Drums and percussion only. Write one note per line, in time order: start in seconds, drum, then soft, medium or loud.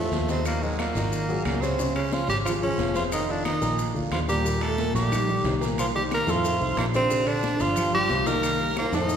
0.12 high conga medium
0.12 high timbale medium
0.12 short guiro medium
0.12 maracas soft
0.29 high conga medium
0.29 high timbale medium
0.29 short guiro medium
0.29 maracas medium
0.45 high conga soft
0.45 high timbale medium
0.45 long guiro medium
0.45 claves medium
0.45 maracas medium
0.63 high conga soft
0.63 maracas soft
0.79 high conga medium
0.79 high timbale medium
0.79 short guiro medium
0.79 claves medium
0.79 maracas soft
0.95 high conga soft
0.95 short guiro medium
0.95 maracas medium
1.12 high conga soft
1.12 high timbale medium
1.12 long guiro medium
1.12 maracas medium
1.29 high conga soft
1.29 maracas soft
1.45 high conga medium
1.45 high timbale medium
1.45 low timbale medium
1.45 short guiro medium
1.45 claves medium
1.45 maracas soft
1.62 high conga medium
1.62 short guiro medium
1.62 maracas medium
1.79 high conga soft
1.79 high timbale medium
1.79 long guiro medium
1.79 maracas medium
1.96 high conga soft
1.96 high timbale medium
1.96 claves medium
2.12 high conga medium
2.12 short guiro medium
2.12 maracas soft
2.28 high conga soft
2.28 high timbale medium
2.28 short guiro medium
2.28 maracas medium
2.45 high conga soft
2.45 low conga medium
2.45 high timbale medium
2.45 long guiro medium
2.45 claves medium
2.45 maracas medium
2.63 high conga soft
2.63 low conga medium
2.63 maracas soft
2.79 high conga medium
2.79 high timbale medium
2.79 low timbale medium
2.79 short guiro medium
2.79 maracas soft
2.95 high conga medium
2.95 high timbale medium
2.95 short guiro medium
2.95 maracas medium
3.12 high conga soft
3.12 high timbale medium
3.12 long guiro medium
3.12 claves medium
3.12 maracas medium
3.29 high conga soft
3.29 maracas soft
3.45 high conga medium
3.45 high timbale medium
3.45 short guiro medium
3.45 claves medium
3.45 maracas soft
3.62 high conga soft
3.62 short guiro medium
3.62 maracas medium
3.79 high conga soft
3.79 high timbale medium
3.79 long guiro medium
3.79 maracas medium
3.96 high conga soft
3.96 maracas soft
4.12 high conga medium
4.12 high timbale medium
4.12 low timbale medium
4.12 short guiro medium
4.12 claves medium
4.12 maracas soft
4.29 high conga medium
4.29 short guiro medium
4.29 maracas medium
4.45 high conga soft
4.45 high timbale medium
4.45 long guiro medium
4.45 maracas medium
4.61 high conga soft
4.61 high timbale medium
4.61 claves medium
4.61 maracas soft
4.78 high conga medium
4.78 short guiro medium
4.78 maracas soft
4.95 high conga soft
4.95 high timbale medium
4.95 short guiro medium
4.95 maracas medium
5.12 high conga soft
5.12 low conga medium
5.12 high timbale medium
5.12 long guiro medium
5.12 claves medium
5.12 maracas medium
5.29 high conga soft
5.29 low conga medium
5.29 maracas soft
5.45 high conga medium
5.45 high timbale medium
5.45 low timbale medium
5.45 short guiro medium
5.45 maracas soft
5.61 high timbale medium
5.61 short guiro medium
5.61 maracas medium
5.78 high conga soft
5.78 high timbale medium
5.78 claves medium
5.78 maracas medium
5.95 high conga soft
6.11 high conga medium
6.11 high timbale medium
6.11 short guiro medium
6.11 claves medium
6.11 maracas soft
6.27 high conga soft
6.27 short guiro medium
6.27 maracas medium
6.43 high conga soft
6.43 high timbale medium
6.43 long guiro medium
6.43 maracas medium
6.61 high conga soft
6.61 maracas soft
6.77 high conga medium
6.77 high timbale medium
6.77 low timbale medium
6.77 short guiro medium
6.77 claves medium
6.77 maracas soft
6.94 short guiro medium
6.94 maracas medium
7.10 high timbale medium
7.10 long guiro medium
7.10 maracas medium
7.27 high conga soft
7.27 high timbale medium
7.27 claves medium
7.27 maracas soft
7.43 high conga loud
7.43 short guiro medium
7.43 maracas soft
7.60 high conga soft
7.60 high timbale medium
7.60 short guiro medium
7.60 maracas medium
7.76 high conga soft
7.76 low conga medium
7.76 high timbale medium
7.76 claves medium
7.76 maracas medium
7.93 high conga soft
7.93 low conga medium
7.93 maracas soft
8.09 high conga medium
8.09 high timbale medium
8.09 low timbale medium
8.09 short guiro medium
8.09 maracas soft
8.26 high timbale medium
8.26 short guiro medium
8.26 maracas medium
8.43 high conga soft
8.43 high timbale medium
8.43 long guiro medium
8.43 claves medium
8.43 maracas medium
8.60 high conga soft
8.60 maracas soft
8.76 high conga medium
8.76 high timbale medium
8.76 short guiro medium
8.76 claves medium
8.76 maracas soft
8.93 high conga soft
8.93 high timbale medium
8.93 short guiro medium
8.93 maracas medium
9.09 high conga soft
9.09 maracas medium